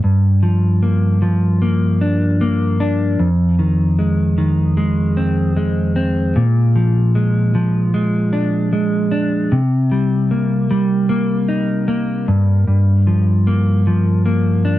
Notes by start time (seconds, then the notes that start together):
Already playing: A#3 G4
0.04 G2
0.43 F3
0.83 A#3
1.22 F3
1.62 A#3
2.01 D4
2.41 A#3
2.80 D4
3.19 F2
3.59 D#3
3.99 G#3
4.38 D#3
4.77 G#3
5.17 C4
5.57 G#3
5.96 C4
6.36 A#2
6.76 F3
7.15 G#3
7.55 F3
7.94 G#3
8.33 D4
8.73 G#3
9.12 D4
9.52 C3
9.91 G3
10.31 A#3
10.71 G3
11.09 A#3
11.48 D#4
11.88 A#3
12.28 G2
12.67 G2
13.07 F3
13.47 A#3
13.87 F3
14.26 A#3
14.65 D4